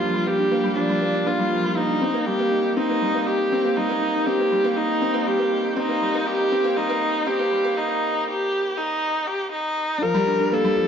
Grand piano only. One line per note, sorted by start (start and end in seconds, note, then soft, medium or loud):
0.00 0.76 F3 medium
0.00 0.14 G3 loud
0.00 0.26 A#3 medium
0.00 0.39 D4 medium
0.14 0.21 G3 medium
0.26 0.38 A#3 medium
0.39 0.51 D4 medium
0.52 0.64 A#3 medium
0.64 0.76 G3 medium
0.76 0.89 F3 medium
0.89 0.96 G3 medium
1.02 1.14 A#3 medium
1.14 1.26 D4 medium
1.27 1.39 A#3 medium
1.39 1.51 G3 medium
1.52 1.64 F3 medium
1.64 1.71 G3 medium
1.77 1.89 A#3 medium
1.89 2.01 D4 medium
2.02 2.14 C4 medium
2.14 2.26 A#3 loud
2.27 2.39 G3 medium
2.39 2.46 A#3 medium
2.52 2.63 D#4 medium
2.64 2.76 D#4 medium
2.77 2.89 C4 medium
2.89 3.01 A#3 medium
3.02 3.14 G3 medium
3.14 3.22 A#3 medium
3.27 3.38 D#4 medium
3.40 3.51 D#4 medium
3.52 3.64 C4 medium
3.65 3.76 A#3 medium
3.77 3.89 G3 medium
3.89 3.97 A#3 loud
4.02 4.13 D#4 medium
4.14 4.26 D#4 medium
4.27 4.39 C4 medium
4.39 4.51 A#3 medium
4.52 4.64 G3 medium
4.64 4.72 A#3 loud
4.77 4.88 D#4 medium
4.89 5.01 D#4 medium
5.02 5.14 C4 medium
5.14 5.26 A#3 loud
5.27 5.39 G3 medium
5.39 5.46 A#3 medium
5.52 5.63 D#4 medium
5.64 5.76 D#4 medium
5.76 5.89 C4 loud
5.89 6.01 A#3 loud
6.02 6.14 G3 medium
6.14 6.21 A#3 loud
6.27 6.38 D#4 medium
6.40 6.51 D#4 medium
6.52 6.64 C4 medium
6.64 6.76 A#3 loud
6.77 6.89 G3 medium
6.89 6.97 A#3 loud
7.02 7.13 D#4 medium
7.14 7.26 D#4 medium
7.27 7.39 C4 loud
7.39 7.51 A#3 loud
7.52 7.64 G3 medium
7.65 7.72 A#3 loud
7.77 7.88 D#4 medium
7.89 8.01 D#4 medium
10.02 10.14 F3 medium
10.14 10.22 G3 loud
10.27 10.38 D4 medium
10.39 10.51 D4 medium
10.52 10.64 A#3 medium
10.65 10.76 G3 loud
10.77 10.88 F3 medium